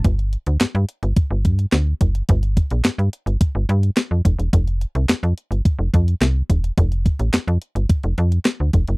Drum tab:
HH |xxxxxxxxx-xxx-xx|xxxxxxxxx-xxx-xx|xxxxxxxxx-xxx-xx|xxxxxxxxxxxxx-xx|
CP |----x-------x---|----x-------x---|----x-------x---|----x-------x---|
SD |----o-------o---|----o-------o---|----o-------o---|----o-------o---|
BD |o-------o-o---o-|o-o-----o-----o-|o-------o-o---o-|o-o-----o-----o-|